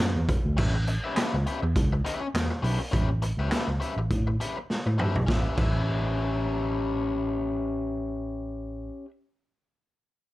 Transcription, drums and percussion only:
0.00 snare loud
0.00 clap loud
0.29 kick loud
0.29 closed hi-hat medium
0.58 kick loud
0.58 crash loud
0.87 closed hi-hat medium
1.17 snare loud
1.17 clap loud
1.17 closed hi-hat loud
1.47 closed hi-hat soft
1.76 kick medium
1.76 closed hi-hat medium
2.06 closed hi-hat medium
2.35 snare loud
2.35 clap loud
2.35 closed hi-hat loud
2.64 open hi-hat medium
2.93 kick loud
2.93 closed hi-hat medium
3.22 closed hi-hat medium
3.52 snare loud
3.52 clap medium
3.52 closed hi-hat loud
3.81 closed hi-hat medium
4.10 kick medium
4.10 closed hi-hat medium
4.41 closed hi-hat medium
4.70 snare medium
4.99 mid tom medium
5.15 floor tom medium
5.28 kick loud
5.28 snare medium
5.57 kick loud
5.57 crash medium

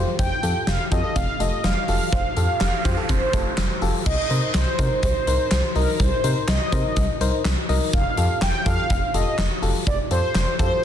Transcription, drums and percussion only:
0.19 kick loud
0.19 closed hi-hat medium
0.43 closed hi-hat medium
0.67 snare loud
0.67 closed hi-hat medium
0.92 kick medium
0.92 closed hi-hat medium
1.16 kick medium
1.16 closed hi-hat medium
1.40 closed hi-hat medium
1.64 snare loud
1.64 closed hi-hat medium
1.88 open hi-hat medium
2.12 kick loud
2.12 closed hi-hat medium
2.37 closed hi-hat medium
2.61 snare loud
2.61 clap medium
2.61 closed hi-hat medium
2.85 kick medium
2.85 closed hi-hat medium
3.09 kick medium
3.09 closed hi-hat medium
3.33 kick loud
3.33 closed hi-hat medium
3.57 snare loud
3.57 clap medium
3.57 closed hi-hat medium
3.82 open hi-hat medium
4.06 kick loud
4.06 crash loud
4.30 closed hi-hat medium
4.54 snare loud
4.54 clap loud
4.54 closed hi-hat medium
4.79 kick medium
4.79 closed hi-hat medium
5.03 kick loud
5.03 closed hi-hat medium
5.27 closed hi-hat medium
5.51 snare loud
5.51 clap loud
5.51 closed hi-hat medium
5.75 open hi-hat medium
6.00 kick loud
6.00 closed hi-hat medium
6.24 closed hi-hat medium
6.48 snare loud
6.48 clap loud
6.48 closed hi-hat medium
6.72 kick medium
6.72 closed hi-hat medium
6.96 kick medium
6.96 closed hi-hat medium
7.21 closed hi-hat medium
7.45 snare loud
7.45 clap loud
7.45 closed hi-hat medium
7.69 open hi-hat medium
7.93 kick loud
7.93 closed hi-hat medium
8.17 closed hi-hat medium
8.42 snare loud
8.42 clap medium
8.42 closed hi-hat medium
8.66 kick medium
8.66 closed hi-hat medium
8.90 kick loud
8.90 closed hi-hat medium
9.14 closed hi-hat medium
9.38 snare loud
9.38 clap loud
9.38 closed hi-hat medium
9.63 open hi-hat medium
9.87 kick loud
9.87 closed hi-hat medium
10.11 closed hi-hat medium
10.35 snare loud
10.35 clap medium
10.35 closed hi-hat medium
10.59 kick medium
10.59 closed hi-hat medium

